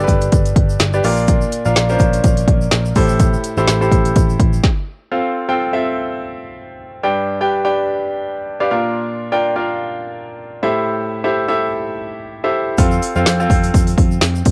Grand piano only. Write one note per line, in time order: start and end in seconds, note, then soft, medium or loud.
0.00 1.06 G2 medium
0.00 0.94 D4 medium
0.00 0.94 G4 medium
0.00 1.06 A4 medium
0.00 0.04 B4 medium
0.00 0.83 B4 medium
0.00 0.94 D5 medium
0.94 1.03 D4 medium
0.94 1.04 G4 medium
0.94 1.04 B4 medium
0.94 1.03 D5 medium
1.04 1.72 A#2 medium
1.04 1.57 D4 medium
1.04 1.57 F4 medium
1.04 1.57 A#4 medium
1.04 1.57 D5 loud
1.65 1.86 D4 medium
1.65 1.86 F4 medium
1.65 1.86 A#4 medium
1.65 1.86 F5 loud
1.90 1.95 C#4 medium
1.90 2.72 F4 medium
1.90 2.72 A#4 medium
1.90 2.72 C5 medium
1.95 2.75 D4 medium
2.96 3.64 A2 medium
2.96 3.49 E4 medium
2.96 3.49 G4 medium
2.96 3.49 A4 medium
2.96 3.49 C5 loud
3.57 3.78 E4 medium
3.57 3.78 G4 medium
3.57 3.78 A4 medium
3.57 3.78 C5 loud
3.81 4.63 E4 medium
3.81 4.63 G4 medium
3.81 4.63 A4 medium
3.81 4.63 C5 medium
5.12 5.44 C4 medium
5.12 5.44 F4 medium
5.12 5.44 A4 medium
5.12 5.44 C5 medium
5.12 5.44 F5 medium
5.49 5.69 C4 medium
5.49 5.69 F4 medium
5.49 5.69 A4 medium
5.49 5.69 C5 medium
5.49 5.69 G5 medium
5.73 6.55 C4 medium
5.73 6.55 F4 medium
5.73 6.55 A4 medium
5.73 6.55 C5 medium
5.73 6.55 E5 medium
7.03 7.71 G2 medium
7.03 7.36 D4 medium
7.03 7.36 G4 medium
7.03 7.36 B4 medium
7.03 7.36 D5 medium
7.03 7.36 G5 medium
7.41 7.61 D4 medium
7.41 7.61 G4 medium
7.41 7.61 B4 medium
7.41 7.61 D5 medium
7.41 7.61 G5 medium
7.65 8.47 D4 medium
7.65 8.47 G4 medium
7.65 8.47 B4 medium
7.65 8.47 D5 medium
7.65 8.47 G5 loud
8.60 8.70 D4 medium
8.60 8.71 G4 medium
8.60 8.71 B4 medium
8.60 8.70 D5 medium
8.60 8.69 F5 medium
8.71 9.39 A#2 medium
8.71 9.24 D4 medium
8.71 9.24 F4 medium
8.71 9.24 A#4 medium
8.71 9.24 D5 medium
8.71 9.24 F5 medium
9.32 9.53 D4 medium
9.32 9.53 F4 medium
9.32 9.53 A#4 medium
9.32 9.53 D5 medium
9.32 9.53 G5 loud
9.56 10.38 D4 medium
9.56 10.38 F4 medium
9.56 10.38 A#4 medium
9.56 10.38 D5 medium
9.56 10.38 F5 medium
10.63 11.31 A2 medium
10.63 11.15 E4 medium
10.63 11.15 G4 medium
10.63 11.16 A4 medium
10.63 11.16 C5 medium
10.63 11.15 E5 medium
11.24 11.45 E4 medium
11.24 11.45 G4 medium
11.24 11.45 A4 medium
11.24 11.45 C5 medium
11.24 11.45 E5 medium
11.48 12.30 E4 medium
11.48 12.30 G4 medium
11.48 12.30 A4 medium
11.48 12.30 C5 medium
11.48 12.30 E5 loud
12.44 12.74 E4 medium
12.44 12.74 G4 medium
12.44 12.74 A4 medium
12.44 12.74 C5 medium
12.44 12.74 E5 medium
12.78 13.10 C4 medium
12.78 13.10 F4 medium
12.78 13.11 A4 medium
12.78 13.11 C5 medium
12.78 13.10 F5 medium
13.16 13.36 C4 medium
13.16 13.36 F4 medium
13.16 13.36 A4 medium
13.16 13.36 C5 medium
13.16 13.36 F5 loud
13.40 14.22 C4 medium
13.40 14.22 F4 medium
13.40 14.22 A4 medium
13.40 14.22 C5 medium
13.40 14.22 F5 medium